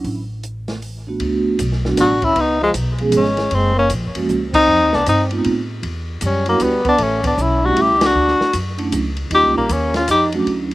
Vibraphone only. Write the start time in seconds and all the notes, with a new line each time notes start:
1.07 A3 B3 D4 F#4
1.85 F#3 A3 B3 D4 F#4
3.00 F3 G#3 B3 C#4 G#4
4.15 F3 G#3 A#3 C#4 F#4
5.31 A3 B3 C4 D#4 F4
6.46 G3 B3 D4 E4 F#4
7.63 G3 A3 C#4 E4 G4
8.78 F#3 A3 C#4 D4 E4
9.31 G3 A#3 C#4 D#4 F4
10.33 F#3 A3 C#4 D4 F#4
10.47 F#3 C#4 D4 E4